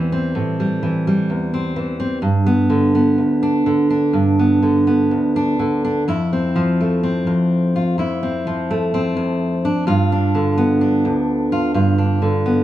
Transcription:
Already playing: E2 E3 G3 C4
0.12 C4
0.35 A2
0.60 G3
0.83 E3
1.07 G3
1.30 E2
1.54 C4
1.76 E3
2.00 C4
2.22 G2
2.46 B3
2.70 D3
2.95 B3
3.18 D2
3.43 D4
3.66 D3
3.90 D4
4.13 G2
4.39 B3
4.62 D3
4.87 B3
5.11 D2
5.36 D4
5.59 D3
5.85 D4
6.08 F2 E4
6.33 C4
6.56 F3
6.81 A3
7.03 C4
7.27 F2
7.76 F4
7.98 F2 E4
8.23 C4
8.47 F3
8.71 A3
8.94 C4
9.17 F2
9.65 D4
9.87 G2 F4
10.12 D4
10.35 D3
10.58 B3
10.81 D4
11.05 D2
11.52 F4
11.74 G2 F4
11.98 D4
12.22 D3
12.46 B3

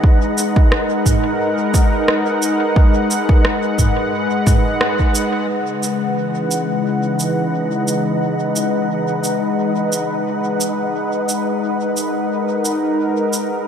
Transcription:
Already playing: G#3 D#4 B4 D#5 F#5
0.04 kick
0.36 D#4, cabasa
0.51 A#4
0.56 kick
0.72 cross-stick
1.06 kick, mid tom, cabasa
1.74 kick, cabasa
2.08 cross-stick
2.42 cabasa
2.76 kick
3.11 cabasa
3.29 kick
3.45 cross-stick
3.79 kick, mid tom, cabasa
4.47 kick, mid tom, cabasa
4.81 cross-stick
5.00 kick
5.15 cabasa
5.49 C#3 D#4 D#5
5.83 cabasa
5.91 E3
6.51 cabasa
7.19 cabasa
7.88 cabasa
8.56 cabasa
9.24 cabasa
9.92 cabasa
10.60 cabasa
11.29 cabasa
11.47 D#4
11.82 A#4
11.97 cabasa
12.65 cabasa
13.33 cabasa

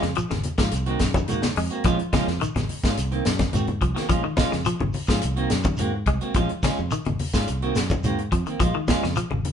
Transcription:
0.02 F2 C#3, muted clean electric guitar stroke, snare, shekere
0.15 F3, muted fingered electric bass stroke, closed hi-hat, high conga, shekere
0.30 G#1 C#3, muted clean electric guitar stroke, snare, high conga
0.43 muted clean electric guitar stroke, closed hi-hat, high conga, shekere
0.58 G#2 F3 F4, muted clean electric guitar stroke, kick, snare, closed hi-hat, shekere
0.71 C2, muted clean electric guitar stroke, closed hi-hat, shekere
0.86 D#3 A#3 C4 F#4, closed hi-hat
0.99 F#2, muted clean electric guitar stroke, kick, snare, closed hi-hat, shekere
1.14 D#3, kick, high conga, low conga, shekere
1.28 G#2 D#3 A#3 F#4, muted clean electric guitar stroke, closed hi-hat, high conga, shekere
1.42 muted clean electric guitar stroke, snare, high conga
1.56 F2 G#3, muted clean electric guitar stroke, open hi-hat, high conga, shekere
1.70 A#3 C4 F#4, closed hi-hat
1.74 shekere
1.84 A#1 F3 G#3 C#4 F4, kick, closed hi-hat, low conga, shekere
1.99 muted clean electric guitar stroke, closed hi-hat
2.13 C#3 F3 G#3 C#4 F4, kick, snare, closed hi-hat, high conga, shekere
2.28 F2, muted clean electric guitar stroke, snare, shekere
2.41 D#3, muted fingered electric bass stroke, closed hi-hat, high conga, shekere
2.55 G#1 C#3, muted clean electric guitar stroke, snare, closed hi-hat, high conga, low conga
2.69 muted clean electric guitar stroke, open hi-hat, shekere
2.84 G#2 C#4 F4, muted clean electric guitar stroke, kick, snare, closed hi-hat, shekere
2.97 C2, muted clean electric guitar stroke, closed hi-hat, high conga, shekere
3.12 D#3 A#3 C4, muted clean electric guitar stroke, closed hi-hat
3.25 F#2, muted clean electric guitar stroke, snare, closed hi-hat, shekere
3.39 kick, snare, closed hi-hat, high conga, low conga, shekere
3.53 G#2 D#3 C4 F#4, closed hi-hat, high conga, shekere
3.67 muted clean electric guitar stroke, closed hi-hat, high conga
3.81 C2 F3, muted clean electric guitar stroke, kick, closed hi-hat, high conga, shekere
3.95 D#3 A#3 C4 F#4, snare, closed hi-hat, shekere
4.09 A#1 F3 G#3 C#4 F4, kick, closed hi-hat, low conga, shekere
4.23 D#3, muted clean electric guitar stroke
4.37 G#3 C#4 F4, kick, snare, closed hi-hat, high conga, shekere
4.52 F2 C#3, muted clean electric guitar stroke, snare, shekere
4.65 F3, muted fingered electric bass stroke, closed hi-hat, high conga, shekere
4.80 G#1 C#3, muted clean electric guitar stroke, high conga, low conga
4.93 muted clean electric guitar stroke, open hi-hat, high conga, shekere
5.07 G#2 F3 C#4 F4, kick, snare, closed hi-hat, shekere
5.22 C2, muted clean electric guitar stroke, closed hi-hat, high conga, shekere
5.36 D#3 A#3 C4 F#4, closed hi-hat
5.50 F#2, muted clean electric guitar stroke, snare, closed hi-hat, shekere
5.64 D#3, kick, high conga, low conga, shekere
5.77 G#2 A#3 C4 F#4, closed hi-hat, high conga, shekere
6.06 C2 G#3, muted clean electric guitar stroke, kick, closed hi-hat, high conga, shekere
6.21 A#3 C4 F#4, closed hi-hat, shekere
6.34 A#1 F3 G#3 C#4 F4, kick, closed hi-hat, low conga, shekere
6.49 muted clean electric guitar stroke, closed hi-hat
6.63 C#3 G#3 C#4 F4, muted fingered electric bass stroke, kick, snare, closed hi-hat, high conga, shekere
6.78 F2, muted clean electric guitar stroke, shekere
6.91 D#3, muted fingered electric bass stroke, closed hi-hat, high conga, shekere
7.05 G#1 C#3, muted clean electric guitar stroke, closed hi-hat, high conga
7.19 muted clean electric guitar stroke, open hi-hat, high conga, shekere
7.33 G#2 C#4 F4, kick, snare, closed hi-hat, shekere
7.47 C2, muted clean electric guitar stroke, closed hi-hat, high conga, shekere
7.62 D#3 A#3 C4 F#4, closed hi-hat
7.75 F#2, muted clean electric guitar stroke, snare, closed hi-hat, shekere
7.90 kick, closed hi-hat, high conga, low conga, shekere
8.03 G#2 D#3 A#3 C4 F#4, closed hi-hat, high conga, shekere
8.18 muted clean electric guitar stroke, closed hi-hat
8.32 F2 F3, muted clean electric guitar stroke, kick, closed hi-hat, high conga, shekere
8.46 D#3 A#3 C4, closed hi-hat, shekere
8.60 A#1 F3 G#3 F4, muted clean electric guitar stroke, kick, closed hi-hat, low conga, shekere
8.75 D#3, muted clean electric guitar stroke
8.88 G#3 C#4 F4, kick, snare, closed hi-hat, high conga, shekere
9.03 F2 C#3, muted clean electric guitar stroke, snare, shekere
9.16 F3, muted fingered electric bass stroke, closed hi-hat, high conga, shekere
9.31 G#1 C#3, muted clean electric guitar stroke, high conga
9.45 muted clean electric guitar stroke, closed hi-hat, high conga, shekere

